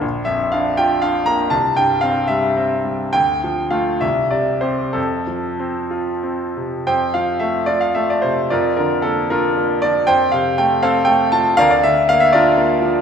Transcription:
X:1
M:6/8
L:1/16
Q:3/8=76
K:F
V:1 name="Grand piano"
z2 e2 f2 g2 f2 b2 | a2 g2 f2 e6 | g4 f2 e2 d2 c2 | A6 z6 |
[cg]2 f2 e2 d f e d c2 | [FBd]2 B2 A2 [DFB]4 d2 | [cg]2 f2 g2 [Acf]2 g2 a2 | [Bdf] d e2 f e [FBd]4 z2 |]
V:2 name="Grand piano" clef=bass
B,,,2 F,,2 D2 F2 D2 B,2 | C,,2 G,,2 C2 G,2 C2 G,2 | D,,2 F,2 [A,F]2 C,,2 C,2 [CG]2 | F,,2 F,2 C2 F2 C2 C,2 |
F,,2 F,2 A,2 F2 A,2 C,2 | F,,2 D,2 B,4 B,2 F,2 | F,,2 C,2 A,2 C2 A,2 F,2 | D,,2 D,2 B,2 D2 B,2 F,2 |]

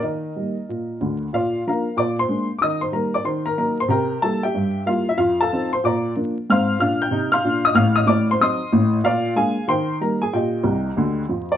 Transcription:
X:1
M:4/4
L:1/16
Q:"Swing" 1/4=186
K:Eb
V:1 name="Upright piano"
[Be]12- [Be]2 z2 | [K:Bb] [Fdf]4 [Bfb]4 [dd']2 [cc']4- [cc'] d' | [ee']2 [cc']2 [Bb]2 [dd']2 [cc']2 [Bb]2 [Bb]2 [cc']2 | [Bgb]4 [Aa]2 [G=eg]6 [Ff]2 [=Ee]2 |
[Ff]2 [Afa]4 [cc']2 [dbd']4 z4 | [K:Eb] [fc'f']4 [ff']2 [gg']4 [fc'f']4 [ee']2 | [ff']2 [ee']2 [dd']2 [cc']2 [ec'e']8 | [Fdf]4 [Afa]4 [cgc']4 [Bb]2 [Aa]2 |
[Geg]12- [Geg]2 d2 |]
V:2 name="Upright piano" clef=bass
E,4 [G,B,E]4 B,,4 [D,,D,]4 | [K:Bb] B,,4 [F,B,D]4 B,,4 [_A,B,D]4 | E,4 [G,B,E]4 E,4 [_G,B,E]4 | C,4 [G,B,=E]4 G,,4 [G,B,E]4 |
F,,4 [F,CE]4 B,,4 [F,B,D]4 | [K:Eb] [A,,C]4 [B,,D]4 [C,E]4 [B,,D]4 | [=A,,,=A,,]4 [A,,,A,,]4 [^F,CE]4 [A,,,A,,]4 | B,,4 [A,B,D]4 E,4 [G,B,E]4 |
B,,4 [C,,C,]4 [D,,D,]4 [F,,F,]4 |]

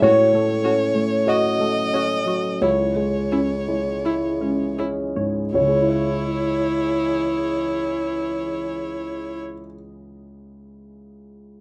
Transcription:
X:1
M:4/4
L:1/16
Q:1/4=39
K:C#m
V:1 name="Violin"
c4 d4 c6 z2 | c16 |]
V:2 name="Ambient pad"
[F,CA]8 [E,Gd]8 | [E,Gd]16 |]
V:3 name="Synth pluck"
F A A c F A c F E z C E E C G c | z16 |]
V:4 name="Viola"
F2 F2 F2 F2 E2 E2 E2 E2 | E16 |]
V:5 name="Grand piano"
c4 d4 c6 z2 | [C,,C,G,CEc]16 |]
V:6 name="Grand piano"
A,, A, C A, F A, C F, C,, G, C G, E G, C G,, | z16 |]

